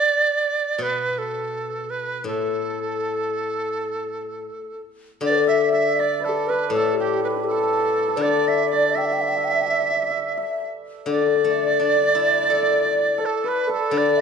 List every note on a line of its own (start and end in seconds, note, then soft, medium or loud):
0.00 0.84 D5 loud
0.78 2.25 B2 medium
0.78 1.20 B4 medium
1.18 1.92 A4 medium
1.90 2.26 B4 medium
2.24 4.46 A2 soft
2.24 4.81 A4 medium
5.21 6.71 D3 medium
5.21 5.99 D5 medium
5.21 5.31 D5 medium
5.21 5.47 D5 medium
5.30 5.39 B4 medium
5.38 5.50 D5 medium
5.47 5.72 E5 medium
5.47 5.71 E5 medium
5.47 5.98 E5 medium
5.73 8.02 E5 medium
5.73 6.01 E5 medium
5.97 6.22 D5 medium
5.97 8.23 D5 medium
5.97 6.26 D5 medium
6.20 6.49 B4 soft
6.24 6.31 A4 medium
6.24 6.51 A4 medium
6.24 6.76 A4 medium
6.29 6.34 G4 medium
6.29 6.48 A4 medium
6.47 6.70 B4 medium
6.47 6.73 B4 medium
6.47 7.25 B4 medium
6.70 8.18 A2 medium
6.70 6.87 A4 medium
6.74 6.96 A4 medium
6.74 7.51 A4 medium
6.87 6.95 A4 soft
6.94 7.46 G4 medium
6.99 7.21 G4 medium
6.99 10.14 G4 medium
7.24 7.29 B4 medium
7.24 9.98 B4 medium
7.30 7.32 A4 soft
7.30 7.35 B4 soft
7.35 7.38 D4 soft
7.35 7.41 E4 soft
7.41 7.47 G4 medium
7.41 8.18 A4 medium
7.47 8.23 A4 medium
7.47 7.58 A4 medium
7.58 7.62 A4 soft
7.63 7.73 A4 soft
7.73 7.79 A4 soft
7.79 7.88 A4 soft
7.88 7.97 A4 soft
7.97 8.02 A4 soft
8.02 8.08 A4 soft
8.08 11.01 A4 medium
8.17 10.34 D3 medium
8.17 8.65 D5 medium
8.22 8.49 D5 medium
8.22 8.72 D5 medium
8.48 8.95 E5 medium
8.48 8.70 E5 medium
8.66 8.92 D5 medium
8.71 8.97 D5 medium
8.71 11.07 D5 medium
8.91 8.99 E5 medium
8.95 10.73 E5 medium
8.95 9.01 E5 medium
8.95 9.07 G5 medium
9.01 9.11 E5 medium
9.06 9.14 E5 medium
9.11 9.17 E5 medium
9.11 9.23 G5 medium
9.18 9.23 E5 soft
9.18 9.30 E5 medium
9.23 9.31 E5 medium
9.29 9.37 E5 soft
9.29 9.38 G5 medium
9.37 9.46 E5 medium
9.37 9.47 E5 medium
9.45 9.52 E5 soft
9.45 9.54 G5 medium
9.52 9.62 E5 medium
9.52 9.61 E5 soft
9.61 9.66 E5 soft
9.61 9.68 G5 medium
9.66 9.72 E5 soft
9.66 10.08 E5 medium
9.72 9.81 E5 soft
9.82 9.90 E5 medium
9.91 9.96 E5 soft
9.97 10.02 E5 medium
10.02 10.10 E5 soft
10.10 10.17 E5 medium
10.18 10.37 E5 soft
10.32 10.67 E5 medium
10.37 12.67 E5 medium
11.05 13.21 D3 medium
11.05 13.22 D5 medium
11.05 11.17 D5 medium
11.11 13.27 D5 medium
11.17 11.21 D5 soft
11.17 11.26 D5 medium
11.27 11.35 D5 soft
11.36 11.43 D5 medium
11.43 12.87 A3 soft
11.43 11.50 D5 soft
11.50 11.58 D5 medium
11.58 11.66 D5 soft
11.66 11.71 D5 medium
11.79 13.22 D4 soft
11.79 11.88 D5 soft
11.88 11.95 D5 soft
11.96 12.01 D5 soft
12.02 12.07 D5 soft
12.08 12.14 D5 soft
12.14 13.58 E4 soft
12.14 12.20 D5 soft
12.21 12.28 D5 soft
12.28 12.37 D5 soft
12.38 12.44 D5 soft
12.44 12.48 D5 soft
12.48 13.94 A4 soft
12.48 12.56 D5 medium
12.56 12.62 D5 soft
12.62 12.71 D5 medium
12.72 12.79 D5 soft
12.79 12.85 D5 medium
12.85 12.90 D5 soft
12.91 12.99 D5 medium
12.99 13.91 D5 soft
13.18 13.69 A4 medium
13.18 13.47 A4 medium
13.25 13.50 A4 medium
13.44 14.21 B4 medium
13.44 13.69 B4 medium
13.48 13.71 B4 medium
13.67 13.91 A4 medium
13.67 14.21 A4 medium
13.72 13.99 A4 medium
13.91 14.21 D3 medium
13.91 14.18 D5 medium
13.91 14.21 D5 medium
13.98 14.21 D5 medium
14.17 14.21 E5 medium